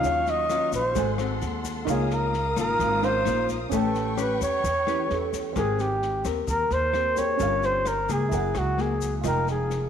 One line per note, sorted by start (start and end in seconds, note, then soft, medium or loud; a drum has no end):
0.00 0.68 D#2 medium
0.00 0.93 D#3 medium
0.00 0.46 F#3 medium
0.00 0.46 C#4 medium
0.00 0.92 D#4 soft
0.00 0.46 F4 medium
0.00 0.31 F5 loud
0.00 0.95 F5 medium
0.00 kick medium
0.00 snare soft
0.00 shaker medium
0.04 0.94 C#5 soft
0.04 0.95 F5 medium
0.04 0.95 C#6 medium
0.26 0.74 D#5 loud
0.26 snare soft
0.26 shaker soft
0.50 0.80 F#3 medium
0.50 0.81 C#4 medium
0.50 0.81 F4 medium
0.50 cross-stick medium
0.50 snare soft
0.50 shaker medium
0.72 0.94 A#1 medium
0.72 1.17 C5 medium
0.72 kick soft
0.72 snare soft
0.72 shaker medium
0.92 1.38 G#1 medium
0.92 1.85 G#3 medium
0.92 1.14 C4 medium
0.92 1.84 F#4 soft
0.92 1.15 F#4 soft
0.92 1.85 A4 soft
0.92 1.15 A4 medium
0.92 1.87 C6 medium
0.92 kick medium
0.92 snare soft
0.92 shaker medium
0.96 1.87 A4 medium
0.96 1.86 C5 soft
0.96 1.87 F#5 medium
0.96 1.87 G#5 medium
1.18 1.84 C4 medium
1.18 1.84 F#4 medium
1.18 1.85 A4 medium
1.18 cross-stick medium
1.18 snare soft
1.18 shaker soft
1.41 1.84 D#2 medium
1.41 snare soft
1.41 shaker medium
1.64 kick soft
1.64 snare soft
1.64 shaker medium
1.85 2.52 C#2 medium
1.85 2.77 C#3 medium
1.85 2.33 A#3 medium
1.85 2.99 D#4 soft
1.85 2.34 D#4 medium
1.85 3.00 A#4 soft
1.85 3.70 A#4 medium
1.85 3.01 C#5 soft
1.85 3.70 F5 medium
1.85 3.70 D#6 medium
1.85 kick medium
1.85 cross-stick medium
1.85 snare soft
1.85 shaker medium
1.89 2.34 F4 medium
1.89 2.15 G#4 medium
1.89 3.02 F5 medium
2.10 2.58 A#4 medium
2.10 snare soft
2.10 shaker soft
2.33 snare soft
2.56 2.78 G#1 medium
2.56 3.22 A#3 medium
2.56 3.22 D#4 medium
2.56 3.22 F4 medium
2.56 3.06 A#4 medium
2.56 kick soft
2.56 cross-stick medium
2.56 snare soft
2.56 shaker medium
2.79 3.22 G#1 medium
2.79 3.69 G#3 medium
2.79 kick medium
2.79 snare soft
2.79 shaker medium
3.01 3.68 C#4 soft
3.01 3.71 D#4 soft
3.01 3.71 A#4 soft
3.01 3.50 C5 loud
3.01 3.72 F5 soft
3.01 snare soft
3.01 shaker soft
3.25 3.69 A#1 medium
3.25 3.56 A#3 soft
3.25 3.57 D#4 medium
3.25 3.57 F4 medium
3.25 cross-stick medium
3.25 snare soft
3.25 shaker medium
3.48 kick soft
3.48 snare soft
3.48 shaker medium
3.69 4.37 A1 medium
3.69 4.61 A3 medium
3.69 5.51 C#4 soft
3.69 4.14 C#4 medium
3.69 4.14 G4 medium
3.69 5.52 A4 soft
3.69 4.14 B4 medium
3.69 5.54 B4 medium
3.69 5.53 B4 soft
3.69 5.55 G5 medium
3.69 kick medium
3.69 snare soft
3.69 shaker medium
3.73 4.15 A4 medium
3.73 5.54 G5 medium
3.73 5.55 C#6 medium
3.95 snare soft
3.95 shaker soft
4.17 4.63 C#4 medium
4.17 4.63 G4 medium
4.17 4.64 B4 medium
4.17 cross-stick medium
4.17 snare soft
4.17 shaker medium
4.21 4.41 B4 medium
4.41 4.62 E2 medium
4.41 5.30 C#5 loud
4.41 kick soft
4.41 snare soft
4.41 shaker medium
4.64 5.07 E2 medium
4.64 5.54 E3 medium
4.64 kick medium
4.64 snare soft
4.64 shaker medium
4.87 5.52 C#4 medium
4.87 5.08 E4 medium
4.87 5.52 G4 medium
4.87 5.53 B4 medium
4.87 cross-stick medium
4.87 snare soft
4.87 shaker soft
5.10 5.53 E2 medium
5.10 5.53 A4 medium
5.10 snare soft
5.33 kick soft
5.33 snare soft
5.33 shaker medium
5.53 6.21 G#1 loud
5.53 6.46 G#3 medium
5.53 7.12 C4 soft
5.53 6.01 C4 soft
5.53 6.02 G4 medium
5.53 6.02 A#4 medium
5.53 kick medium
5.53 cross-stick medium
5.53 snare soft
5.53 shaker medium
5.57 5.82 G#4 medium
5.57 7.14 A#4 soft
5.57 7.15 G5 medium
5.79 6.26 G4 medium
5.79 snare soft
5.79 shaker soft
6.02 snare soft
6.24 6.46 D#2 medium
6.24 6.90 C4 medium
6.24 6.90 G4 medium
6.24 6.91 A#4 medium
6.24 kick soft
6.24 cross-stick medium
6.24 snare soft
6.24 shaker medium
6.47 6.69 D#2 medium
6.47 7.38 D#3 medium
6.47 6.75 A#4 medium
6.47 kick medium
6.47 snare soft
6.47 shaker medium
6.71 7.36 D#2 medium
6.71 7.20 C5 loud
6.71 snare soft
6.71 shaker soft
6.93 7.36 C4 medium
6.93 7.36 G4 medium
6.93 7.36 A#4 medium
6.93 cross-stick medium
6.93 snare soft
7.16 7.39 C4 soft
7.16 7.40 G#4 soft
7.16 7.39 A#4 soft
7.16 7.67 C#5 loud
7.16 7.41 G5 soft
7.16 kick soft
7.16 snare soft
7.16 shaker medium
7.37 8.05 G1 loud
7.37 8.30 G3 medium
7.37 8.29 C#4 soft
7.37 7.86 C#4 medium
7.37 7.86 F4 medium
7.37 8.30 G4 soft
7.37 8.31 A#4 soft
7.37 kick medium
7.37 snare soft
7.37 shaker medium
7.41 7.86 A#4 medium
7.41 8.32 F5 soft
7.63 7.89 C5 medium
7.63 snare soft
7.63 shaker soft
7.85 8.13 A#4 medium
7.85 cross-stick medium
7.85 snare soft
7.85 shaker medium
8.09 8.30 C#2 medium
8.09 8.74 A#3 medium
8.09 8.75 E4 medium
8.09 8.75 G#4 medium
8.09 8.60 G#4 medium
8.09 kick soft
8.09 snare soft
8.09 shaker medium
8.28 8.53 F#1 medium
8.28 9.22 F#3 medium
8.28 9.21 E4 soft
8.28 9.22 G#4 soft
8.28 kick medium
8.28 snare soft
8.28 shaker medium
8.33 9.23 A#4 soft
8.33 9.24 F#5 medium
8.55 9.20 C#2 medium
8.55 8.83 F#4 medium
8.55 cross-stick medium
8.55 snare soft
8.55 shaker soft
8.78 9.21 A#3 medium
8.78 9.21 E4 medium
8.78 9.21 G#4 medium
8.78 9.15 G#4 medium
8.78 snare soft
9.01 kick soft
9.01 snare soft
9.01 shaker medium
9.21 9.89 F1 medium
9.21 9.89 F3 medium
9.21 9.89 G#3 medium
9.21 9.89 D#4 medium
9.21 9.89 F4 soft
9.21 9.89 D#5 soft
9.21 kick medium
9.21 cross-stick medium
9.21 snare soft
9.21 shaker medium
9.27 9.48 A#4 medium
9.27 9.89 G5 medium
9.47 9.89 G#4 medium
9.47 snare soft
9.47 shaker soft
9.70 snare soft
9.70 shaker medium